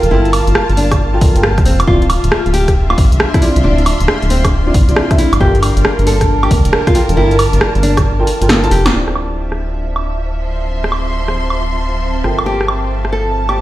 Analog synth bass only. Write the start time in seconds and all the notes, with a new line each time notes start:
0.03 F1
0.11 G1
0.47 G1
0.69 G1
1.36 G1
1.66 F1
1.88 D1
2.24 D1
2.46 D1
2.98 A1
3.12 C2
3.56 C2
3.64 D1
4.00 D1
4.22 D1
4.74 A1
4.89 C2
5.33 G1
5.41 G1
5.77 G1
5.99 G1
6.51 D2
6.65 F1
7.09 F1
7.17 G1
7.53 G1
7.75 G1
8.41 G1
8.71 F1
8.93 D1
12.24 G1